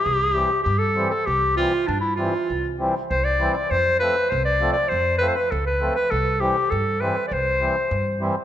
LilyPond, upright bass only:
\new Staff \with { instrumentName = "Upright bass" } { \clef bass \time 2/4 \key c \major \tempo 4 = 100 c,4 g,4 | c,4 g,4 | c,4 c,4 | f,4 c,4 |
f,4 des,4 | c,4 g,4 | c,4 g,4 | }